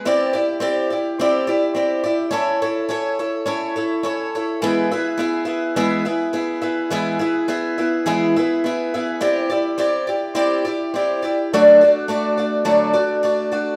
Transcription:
0.05 0.34 C4 medium
0.05 0.34 E4 medium
0.05 0.34 G4 medium
0.05 0.32 D5 loud
0.33 0.60 E4 soft
0.33 0.61 G4 medium
0.33 0.61 D5 medium
0.60 0.90 C4 medium
0.60 0.90 E4 medium
0.60 0.91 G4 medium
0.60 0.89 D5 medium
0.90 1.20 E4 soft
0.90 1.20 G4 soft
0.90 1.19 D5 soft
1.20 1.48 C4 medium
1.20 1.48 E4 medium
1.20 1.47 G4 loud
1.20 1.46 D5 medium
1.47 1.75 E4 soft
1.47 1.75 G4 medium
1.47 1.76 D5 medium
1.75 2.04 C4 medium
1.75 2.04 E4 medium
1.75 2.04 G4 medium
1.75 2.02 D5 medium
2.04 2.31 E4 medium
2.04 2.32 G4 soft
2.04 2.33 D5 medium
2.31 2.61 C#4 medium
2.31 2.62 E4 medium
2.31 2.61 A4 loud
2.31 2.61 C#5 medium
2.62 2.88 E4 soft
2.62 2.89 A4 medium
2.62 2.90 C#5 medium
2.89 3.19 C#4 medium
2.89 3.19 E4 medium
2.89 3.18 A4 medium
2.89 3.18 C#5 medium
3.19 3.45 E4 soft
3.19 3.46 A4 medium
3.19 3.46 C#5 medium
3.46 3.76 C#4 medium
3.46 3.76 E4 medium
3.46 3.75 A4 medium
3.46 3.75 C#5 medium
3.76 4.03 E4 medium
3.76 4.03 A4 medium
3.76 4.04 C#5 medium
4.03 4.33 C#4 medium
4.03 4.34 E4 medium
4.03 4.34 A4 medium
4.03 4.34 C#5 medium
4.35 4.62 E4 soft
4.35 4.63 A4 medium
4.35 4.63 C#5 medium
4.62 4.91 E3 medium
4.62 4.91 G#3 medium
4.62 4.92 B3 medium
4.62 4.92 E4 medium
4.62 4.91 G#4 medium
4.62 4.90 E5 loud
4.91 5.16 B3 medium
4.91 5.18 E4 medium
4.91 5.18 G#4 medium
4.91 5.19 E5 medium
5.18 5.46 B3 medium
5.18 5.46 E4 medium
5.18 5.44 G#4 medium
5.18 5.44 E5 medium
5.45 5.75 B3 soft
5.45 5.76 E4 soft
5.45 5.76 G#4 soft
5.45 5.76 E5 medium
5.76 6.06 E3 medium
5.76 6.06 G#3 medium
5.76 6.05 B3 medium
5.76 6.05 E4 medium
5.76 6.05 G#4 medium
5.76 6.04 E5 loud
6.05 6.32 B3 soft
6.05 6.33 E4 medium
6.05 6.33 G#4 medium
6.05 6.34 E5 medium
6.33 6.62 B3 medium
6.33 6.61 E4 medium
6.33 6.61 G#4 medium
6.33 6.60 E5 medium
6.62 6.91 B3 medium
6.62 6.90 E4 medium
6.62 6.91 G#4 medium
6.62 6.91 E5 medium
6.90 7.20 E3 medium
6.90 7.20 G#3 medium
6.90 7.20 B3 medium
6.90 7.20 E4 loud
6.90 7.18 G#4 medium
6.90 7.18 E5 loud
7.19 7.47 B3 soft
7.19 7.47 E4 medium
7.19 7.48 G#4 medium
7.19 7.49 E5 medium
7.48 7.77 B3 medium
7.48 7.78 E4 medium
7.48 7.77 G#4 medium
7.48 7.77 E5 medium
7.78 8.06 B3 soft
7.78 8.06 E4 soft
7.78 8.05 G#4 soft
7.78 8.06 E5 medium
8.06 8.35 E3 medium
8.06 8.35 G#3 medium
8.06 8.36 B3 medium
8.06 8.36 E4 medium
8.06 8.35 G#4 medium
8.06 8.35 E5 medium
8.36 8.63 B3 medium
8.36 8.64 E4 medium
8.36 8.65 G#4 soft
8.36 8.65 E5 medium
8.64 8.93 B3 medium
8.64 8.94 E4 medium
8.64 8.93 G#4 medium
8.64 8.93 E5 medium
8.94 9.21 B3 soft
8.94 9.19 E4 medium
8.94 9.21 G#4 medium
8.94 9.21 E5 medium
9.21 9.50 C4 medium
9.21 9.50 E4 medium
9.21 9.50 G4 medium
9.21 9.48 D5 loud
9.50 9.78 E4 medium
9.50 9.77 G4 medium
9.50 9.79 D5 medium
9.78 10.07 C4 medium
9.78 10.08 E4 medium
9.78 10.07 G4 medium
9.78 10.06 D5 medium
10.07 10.34 E4 soft
10.07 10.35 G4 soft
10.07 10.35 D5 medium
10.35 10.64 C4 medium
10.35 10.64 E4 medium
10.35 10.65 G4 medium
10.35 10.64 D5 medium
10.65 10.94 E4 soft
10.65 10.94 G4 medium
10.65 10.94 D5 medium
10.94 11.22 C4 medium
10.94 11.23 E4 medium
10.94 11.23 G4 medium
10.94 11.21 D5 medium
11.22 11.52 E4 medium
11.22 11.52 G4 medium
11.22 11.51 D5 medium
11.53 11.81 D3 medium
11.53 11.81 F#3 medium
11.53 11.81 A3 medium
11.53 11.81 D4 medium
11.53 11.81 F#4 loud
11.53 11.80 D5 loud
11.81 12.08 D4 medium
11.81 12.09 F#4 medium
11.81 12.09 D5 medium
12.08 12.37 A3 medium
12.08 12.38 D4 medium
12.08 12.38 F#4 medium
12.08 12.36 D5 medium
12.38 12.64 A3 medium
12.38 12.64 D4 soft
12.38 12.64 F#4 soft
12.38 12.65 D5 soft
12.65 12.94 D3 medium
12.65 12.94 F#3 medium
12.65 12.94 A3 medium
12.65 12.94 D4 medium
12.65 12.92 F#4 medium
12.65 12.92 D5 medium
12.93 13.22 A3 soft
12.93 13.22 D4 medium
12.93 13.23 F#4 medium
12.93 13.23 D5 medium
13.23 13.52 A3 medium
13.23 13.52 D4 medium
13.23 13.51 F#4 medium
13.23 13.50 D5 medium
13.52 13.76 A3 soft
13.52 13.76 D4 soft
13.52 13.76 F#4 medium
13.52 13.76 D5 medium

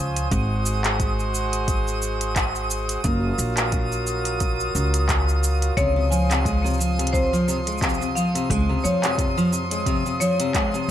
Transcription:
0.00 0.24 C#2 medium
0.00 0.28 F3 medium
0.00 0.28 C#4 medium
0.00 3.00 C5 medium
0.00 10.91 D#6 medium
0.17 closed hi-hat soft
0.17 cabasa soft
0.31 2.99 G#1 loud
0.31 3.02 G#3 medium
0.31 3.02 F#4 medium
0.31 kick loud
0.31 closed hi-hat soft
0.31 cabasa soft
0.66 cabasa medium
0.84 clap medium
0.84 closed hi-hat soft
0.84 cabasa soft
1.00 kick loud
1.00 closed hi-hat soft
1.00 cabasa soft
1.20 cabasa soft
1.35 cabasa medium
1.53 closed hi-hat soft
1.53 cabasa soft
1.68 kick loud
1.68 closed hi-hat soft
1.68 cabasa soft
1.88 cabasa soft
2.02 cabasa medium
2.21 closed hi-hat soft
2.21 cabasa soft
2.36 kick loud
2.36 clap medium
2.36 closed hi-hat soft
2.36 cabasa soft
2.55 cabasa soft
2.71 cabasa medium
2.89 closed hi-hat soft
2.89 cabasa soft
3.04 3.31 F#1 medium
3.04 5.74 F#3 medium
3.04 5.74 F4 medium
3.04 5.74 A#4 medium
3.04 kick loud
3.04 closed hi-hat soft
3.04 cabasa soft
3.38 4.74 A#1 medium
3.38 cabasa medium
3.57 clap medium
3.57 closed hi-hat soft
3.57 cabasa soft
3.72 kick loud
3.72 closed hi-hat soft
3.72 cabasa soft
3.92 cabasa soft
4.07 cabasa medium
4.25 closed hi-hat soft
4.25 cabasa soft
4.40 kick loud
4.40 closed hi-hat soft
4.40 cabasa soft
4.60 cabasa soft
4.75 5.71 C#2 medium
4.75 cabasa medium
4.94 closed hi-hat medium
4.94 cabasa soft
5.09 kick loud
5.09 clap medium
5.09 closed hi-hat soft
5.09 cabasa soft
5.29 cabasa soft
5.44 cabasa medium
5.62 closed hi-hat soft
5.62 cabasa soft
5.77 8.44 C#2 medium
5.77 5.94 C3 medium
5.77 10.91 F3 medium
5.77 6.10 C#5 loud
5.77 10.91 C6 medium
5.77 kick loud
5.77 closed hi-hat soft
5.77 cabasa soft
5.96 6.10 C3 medium
6.11 6.28 F3 medium
6.11 6.43 G#5 medium
6.11 cabasa medium
6.30 6.44 C3 medium
6.30 clap medium
6.30 closed hi-hat soft
6.30 cabasa soft
6.45 6.63 G#3 medium
6.45 kick loud
6.45 closed hi-hat soft
6.45 cabasa soft
6.64 6.78 C3 medium
6.64 cabasa soft
6.70 cabasa soft
6.73 cabasa soft
6.77 6.96 F3 medium
6.77 cabasa soft
6.81 cabasa medium
6.99 7.12 C3 medium
6.99 closed hi-hat medium
6.99 cabasa soft
7.07 closed hi-hat soft
7.13 7.31 C3 medium
7.13 7.34 C5 medium
7.13 kick medium
7.13 cabasa soft
7.33 7.46 F3 medium
7.33 cabasa soft
7.48 7.59 C3 medium
7.48 cabasa medium
7.67 7.80 G#3 medium
7.67 closed hi-hat soft
7.67 cabasa soft
7.72 cabasa soft
7.78 kick loud
7.78 cabasa soft
7.82 7.99 C3 medium
7.82 clap medium
7.82 closed hi-hat soft
7.82 cabasa soft
7.89 cabasa soft
7.94 cabasa soft
8.01 8.14 C3 medium
8.01 cabasa soft
8.15 8.33 F3 medium
8.15 8.48 F5 medium
8.15 cabasa medium
8.35 8.48 C3 medium
8.35 closed hi-hat soft
8.35 cabasa soft
8.50 8.77 C#2 medium
8.50 8.68 G#3 medium
8.50 kick loud
8.50 closed hi-hat soft
8.50 cabasa soft
8.69 8.83 C3 medium
8.84 10.83 F2 medium
8.84 9.01 F3 medium
8.84 9.16 C#5 medium
8.84 cabasa medium
9.04 9.17 C3 medium
9.04 clap medium
9.04 closed hi-hat soft
9.04 cabasa soft
9.18 9.35 C3 medium
9.18 kick loud
9.18 closed hi-hat soft
9.18 cabasa soft
9.37 9.51 F3 medium
9.37 cabasa soft
9.52 9.63 C3 medium
9.52 cabasa medium
9.71 9.85 G#3 medium
9.71 closed hi-hat medium
9.71 cabasa soft
9.86 10.04 C3 medium
9.86 kick medium
9.86 closed hi-hat soft
9.86 cabasa soft
10.06 10.19 C3 medium
10.06 cabasa soft
10.20 10.38 F3 medium
10.20 10.53 C#5 medium
10.20 cabasa medium
10.40 10.53 C3 loud
10.40 closed hi-hat medium
10.40 cabasa soft
10.54 10.73 G#3 medium
10.54 kick loud
10.54 clap medium
10.54 closed hi-hat soft
10.54 cabasa soft
10.74 10.87 C3 medium
10.74 cabasa soft

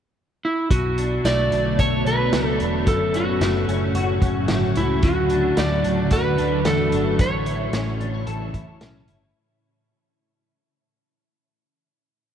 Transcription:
0.45 0.71 E4 medium
0.69 1.18 B1 medium
0.69 2.87 B2 medium
0.69 2.84 D3 medium
0.69 2.84 F#3 medium
0.69 2.84 A3 medium
0.69 2.84 B3 medium
0.69 7.15 F#4 medium
0.69 1.27 F#4 medium
0.69 kick medium
0.69 closed hi-hat medium
0.98 1.51 D4 soft
0.98 closed hi-hat medium
1.25 1.48 B1 medium
1.25 2.33 A3 medium
1.25 1.75 D5 medium
1.25 snare loud
1.25 closed hi-hat medium
1.52 1.76 B1 medium
1.52 2.05 D4 medium
1.52 closed hi-hat soft
1.79 2.03 B1 medium
1.79 3.95 A4 medium
1.79 2.07 C#5 medium
1.79 kick medium
1.79 closed hi-hat medium
2.06 2.30 B1 medium
2.06 2.59 D4 medium
2.06 2.57 B4 medium
2.06 closed hi-hat soft
2.32 2.56 C#2 medium
2.32 3.40 A3 soft
2.32 snare loud
2.32 closed hi-hat medium
2.60 2.87 E1 medium
2.60 2.92 D4 medium
2.60 closed hi-hat soft
2.86 3.35 F#1 medium
2.86 5.03 F#2 medium
2.86 7.15 A2 medium
2.86 5.01 C#3 medium
2.86 7.15 F#3 medium
2.86 5.01 C#4 medium
2.86 3.15 A4 medium
2.86 kick loud
2.86 closed hi-hat medium
3.14 3.67 C#4 medium
3.14 3.65 F#4 medium
3.14 closed hi-hat medium
3.41 3.65 F#1 medium
3.41 4.49 A3 medium
3.41 snare loud
3.41 closed hi-hat medium
3.67 3.91 F#1 medium
3.67 4.21 C#4 medium
3.67 closed hi-hat soft
3.94 4.19 F#1 loud
3.94 6.11 F#4 medium
3.94 closed hi-hat medium
4.22 4.46 F#1 medium
4.22 4.75 C#4 medium
4.22 kick medium
4.22 closed hi-hat soft
4.48 4.73 G1 medium
4.48 5.57 A3 medium
4.48 snare loud
4.48 closed hi-hat medium
4.76 5.00 C#2 medium
4.76 5.09 C#4 medium
4.76 5.04 E4 medium
4.76 closed hi-hat soft
5.03 5.51 D2 medium
5.03 7.19 D3 medium
5.03 7.17 D3 medium
5.03 7.17 D4 medium
5.03 5.59 F#4 medium
5.03 kick loud
5.03 closed hi-hat medium
5.30 5.83 D4 medium
5.30 closed hi-hat medium
5.57 5.81 D2 medium
5.57 6.65 A3 medium
5.57 6.13 D5 medium
5.57 snare medium
5.57 closed hi-hat medium
5.84 6.08 D2 medium
5.84 6.37 D4 medium
5.84 closed hi-hat soft
6.11 6.35 D2 medium
6.11 7.25 F#4 medium
6.11 6.68 B4 loud
6.11 kick medium
6.11 closed hi-hat medium
6.38 6.62 D2 medium
6.38 6.92 D4 medium
6.38 closed hi-hat soft
6.65 6.89 E2 medium
6.65 7.73 A3 medium
6.65 7.21 A4 medium
6.65 snare loud
6.65 closed hi-hat medium
6.92 7.16 G1 medium
6.92 7.25 D4 medium
6.92 closed hi-hat medium
7.18 7.67 A1 medium
7.18 9.33 A2 medium
7.18 9.91 A2 medium
7.18 9.33 C#3 medium
7.18 9.33 E3 medium
7.18 9.33 C#4 medium
7.18 9.33 E4 medium
7.18 8.78 C#5 medium
7.18 kick loud
7.18 closed hi-hat medium
7.46 8.00 E4 medium
7.46 closed hi-hat soft
7.73 7.97 A1 medium
7.73 8.81 C#4 medium
7.73 snare loud
7.73 closed hi-hat medium
8.00 8.24 A1 medium
8.00 8.14 D4 medium
8.00 closed hi-hat soft
8.14 8.53 E4 soft
8.27 8.51 A1 medium
8.27 9.91 A4 medium
8.27 closed hi-hat medium
8.54 8.78 A1 medium
8.54 9.08 E4 medium
8.54 kick medium
8.54 closed hi-hat soft
8.81 9.05 B1 medium
8.81 9.91 C#4 medium
8.81 snare loud
8.81 closed hi-hat medium
9.08 9.32 G1 medium
9.08 9.91 E4 medium
9.08 closed hi-hat medium

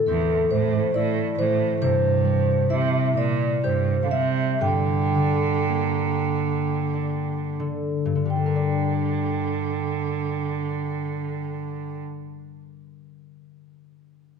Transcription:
0.00 1.87 A2 soft
0.00 1.38 E3 soft
0.06 0.49 E2 medium
0.06 3.08 C4 soft
0.06 0.48 A4 medium
0.51 0.92 A2 medium
0.51 0.96 C5 medium
0.94 1.35 A2 medium
0.94 2.69 E4 soft
0.94 1.39 D5 medium
1.38 1.79 A2 medium
1.38 1.87 E3 soft
1.38 1.81 C5 medium
1.81 2.66 G2 medium
1.81 4.66 C3 medium
1.81 2.73 C5 medium
2.25 4.10 G3 soft
2.70 3.13 C3 medium
2.70 5.31 E4 soft
2.70 3.17 E5 medium
3.17 3.60 A#2 medium
3.17 3.65 D5 medium
3.63 4.02 G2 medium
3.63 5.99 G4 soft
3.63 4.02 C5 medium
4.03 4.11 D3 soft
4.03 4.11 F5 soft
4.11 4.57 C3 medium
4.11 4.66 G3 soft
4.11 4.62 E5 medium
4.61 8.04 G2 soft
4.61 7.56 D3 medium
4.61 7.56 G5 medium
5.15 7.58 D3 soft
5.68 8.90 A#3 soft
6.94 8.35 D4 soft
7.60 8.14 D3 soft
8.05 11.95 G2 soft
8.15 12.05 D3 soft
8.26 12.03 D3 soft
8.26 11.99 G3 soft
8.30 12.04 G5 soft
8.36 12.09 D4 soft
8.46 12.20 A#4 soft
8.55 12.29 D5 soft

